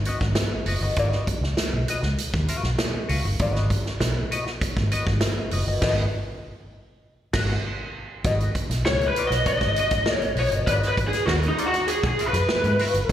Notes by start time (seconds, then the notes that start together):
0.05 F#4 B4 D#5, closed hi-hat
0.20 G#1, muted clean electric guitar stroke, kick, snare
0.35 muted clean electric guitar stroke, snare, closed hi-hat
0.52 muted clean electric guitar stroke
0.66 F#1 F#4 B4 D#5, open hi-hat
0.81 G1 F#4 B4 D#5
0.96 G#1 F4 A#4 D5, kick, closed hi-hat
1.09 F#4 B4 D#5, snare
1.27 kick, closed hi-hat
1.41 C#2, muted clean electric guitar stroke, snare
1.57 muted clean electric guitar stroke, snare, closed hi-hat
1.73 B1, muted clean electric guitar stroke
1.88 F#4 B4 D#5, closed hi-hat
2.03 C#2, muted clean electric guitar stroke, snare
2.18 closed hi-hat
2.33 D#2, muted clean electric guitar stroke, kick, snare
2.48 F#4 B4 F5, closed hi-hat
2.63 B1, muted clean electric guitar stroke, snare
2.78 muted clean electric guitar stroke, snare, closed hi-hat
2.94 muted clean electric guitar stroke
3.09 C#2 F#4 B4 F5, open hi-hat
3.25 G1, muted clean electric guitar stroke
3.39 G#1 F4 A#4 D5, kick, closed hi-hat
3.52 F#4 B4 D#5, snare
3.70 kick, closed hi-hat
3.86 muted clean electric guitar stroke, snare
4.00 B1, muted clean electric guitar stroke, snare, closed hi-hat
4.17 muted clean electric guitar stroke
4.31 F#4 B4 D#5, closed hi-hat
4.46 muted clean electric guitar stroke, snare
4.61 muted clean electric guitar stroke, kick, closed hi-hat
4.76 G#1, muted clean electric guitar stroke, kick, snare
4.92 F#4 B4 D#5, closed hi-hat
5.06 G#1, muted clean electric guitar stroke, kick, snare
5.21 muted clean electric guitar stroke, snare, closed hi-hat
5.37 muted clean electric guitar stroke
5.51 F#1 F#4 B4 D#5, open hi-hat
5.67 G1 F#4 B4 D#5
5.82 G#1 F#4 B4 D#5, kick, snare, crash
7.33 G#1 F#4 B4, kick, snare, crash
8.24 G#1 F#4 B4 D#5, kick, closed hi-hat
8.40 closed hi-hat
8.55 kick, closed hi-hat
8.70 B1, muted clean electric guitar stroke, snare, closed hi-hat
8.85 C#2 C#5, muted clean electric guitar stroke, snare
9.01 muted clean electric guitar stroke, closed hi-hat
9.07 B4
9.16 F#4 B4 D#5, closed hi-hat
9.27 B1 D#5, snare
9.32 muted clean electric guitar stroke, closed hi-hat
9.46 D#5, muted clean electric guitar stroke, kick, closed hi-hat
9.61 G#1, muted clean electric guitar stroke, kick, snare, closed hi-hat
9.76 F#4 B4 D#5, closed hi-hat
9.91 G#1, muted clean electric guitar stroke, kick, snare, closed hi-hat
10.06 muted clean electric guitar stroke, snare
10.14 C#5
10.22 muted clean electric guitar stroke, closed hi-hat
10.36 B1 F#4 B4 C#5 D#5, open hi-hat
10.51 G1 F#4 B4 D#5, closed hi-hat
10.67 G#1 F4 A#4 B4 D5, kick, closed hi-hat
10.79 F#4 B4 D#5, snare, closed hi-hat
10.88 B4
10.97 G#1, kick, closed hi-hat
11.08 G#4
11.13 muted clean electric guitar stroke, snare, closed hi-hat
11.26 D#2 F#4, muted clean electric guitar stroke, snare
11.43 muted clean electric guitar stroke, closed hi-hat
11.48 D#4
11.58 F#4 B4 D#5, closed hi-hat
11.67 F#4
11.73 muted clean electric guitar stroke, snare, closed hi-hat
11.87 G#4, closed hi-hat
12.03 B1 G#4, muted clean electric guitar stroke, kick, snare, closed hi-hat
12.19 F#4 B4 F5, closed hi-hat
12.28 B4
12.33 F#2, muted clean electric guitar stroke, snare, closed hi-hat
12.49 snare
12.64 G#2, muted clean electric guitar stroke, closed hi-hat
12.79 F#4 B4 F5, open hi-hat
12.94 G1, muted clean electric guitar stroke, closed hi-hat
13.09 G#1